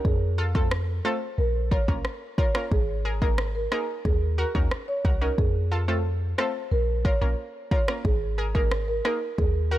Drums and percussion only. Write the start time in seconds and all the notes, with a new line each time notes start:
0.05 kick
0.55 kick
0.71 cross-stick
1.72 kick
1.88 kick
2.05 cross-stick
2.38 kick
2.55 cross-stick
2.72 kick
3.22 kick
3.38 cross-stick
3.72 cross-stick
4.05 kick
4.55 kick
4.71 cross-stick
5.05 kick
5.38 kick
6.39 cross-stick
7.05 kick
7.71 kick
7.88 cross-stick
8.05 kick
8.55 kick
8.71 cross-stick
9.05 cross-stick
9.38 kick